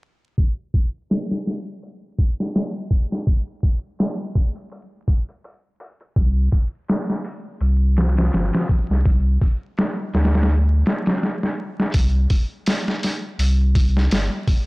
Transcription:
0.38 kick, open hi-hat
0.74 kick, open hi-hat
1.10 snare, open hi-hat
1.31 snare
1.46 snare, open hi-hat
1.82 open hi-hat
2.18 kick, open hi-hat
2.40 snare
2.55 snare, open hi-hat
2.90 kick, open hi-hat
3.12 snare
3.27 kick, open hi-hat
3.63 kick, open hi-hat
3.99 snare, open hi-hat
4.35 kick, open hi-hat
4.56 closed hi-hat
4.71 open hi-hat
5.08 kick, open hi-hat
5.29 closed hi-hat
5.44 open hi-hat
5.80 open hi-hat
6.01 closed hi-hat
6.16 sub bass C2, kick, open hi-hat
6.52 kick, open hi-hat
6.88 snare, open hi-hat
7.10 snare
7.24 open hi-hat
7.60 sub bass C2, open hi-hat
7.97 snare, open hi-hat
8.17 snare, open hi-hat
8.33 sub bass G1, snare, open hi-hat
8.53 snare, open hi-hat
8.69 kick, open hi-hat
8.90 sub bass C2, snare
9.05 sub bass C2, kick, open hi-hat
9.41 kick, open hi-hat
9.77 snare, open hi-hat
10.13 sub bass D2, snare, open hi-hat
10.24 snare, open hi-hat
10.34 snare, open hi-hat
10.42 snare, open hi-hat
10.49 open hi-hat
10.86 snare, open hi-hat
11.06 snare, open hi-hat
11.23 snare
11.43 snare
11.80 snare
11.94 sub bass C2, kick, open hi-hat
12.30 kick, open hi-hat
12.66 snare, open hi-hat
12.88 snare
13.03 snare, open hi-hat
13.39 sub bass C2, open hi-hat
13.75 kick, open hi-hat
13.97 snare
14.11 sub bass G1, snare, open hi-hat
14.47 kick, open hi-hat

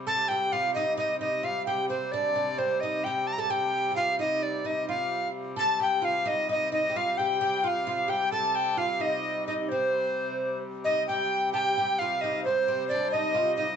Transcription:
0.04 hurdy-gurdy C3 G3, oud A4, recorder A5
0.28 oud G4, recorder G5
0.52 oud F4, recorder F5
0.74 oud D#4, recorder D#5
0.97 oud D#4, recorder D#5
1.20 oud D#4, recorder D#5
1.43 oud F4, recorder F5
1.66 oud G4, recorder G5
1.89 oud C4, recorder C5
2.12 oud D4, recorder D5
2.36 oud D4
2.58 oud C4, recorder C5
2.80 oud D#4, recorder D#5
3.04 oud G4, recorder G5
3.27 recorder A5
3.33 recorder A#5
3.38 oud A4, recorder A5
3.50 oud G4, recorder G5
3.92 oud G4
3.96 oud F4, recorder F5
4.19 oud D#4, recorder D#5
4.43 recorder D5
4.65 oud D#4, recorder D#5
4.89 oud F4, recorder F5
5.56 hurdy-gurdy C3 G3, oud A4, recorder A5
5.80 oud G4, recorder G5
6.02 oud F4, recorder F5
6.25 oud D#4, recorder D#5
6.48 oud D#4, recorder D#5
6.71 oud D#4, recorder D#5
6.89 oud G4
6.95 oud F4, recorder F5
7.18 oud G4, recorder G5
7.41 oud G4, recorder G5
7.64 oud F4, recorder F5 G5
7.87 oud F4, recorder F5
8.08 oud G4, recorder G5
8.32 oud A4, recorder A5
8.55 recorder G5
8.77 oud F4, recorder F5
9.00 oud D#4, recorder D#5
9.46 oud D#4, recorder D#5
9.69 oud C4, recorder C5
10.84 oud D#4, recorder D#5
11.07 hurdy-gurdy C3 G3, oud G4, recorder G5
11.53 oud G4, recorder G5 A5
11.59 recorder G5
11.78 oud G4
11.99 oud F4, recorder F5
12.21 oud D#4, recorder D#5
12.44 oud C4, recorder C5
12.68 oud C4, recorder C5
12.88 oud D4, recorder D5
13.11 oud D#4, recorder D#5
13.34 oud F4
13.56 oud D#4, recorder D#5

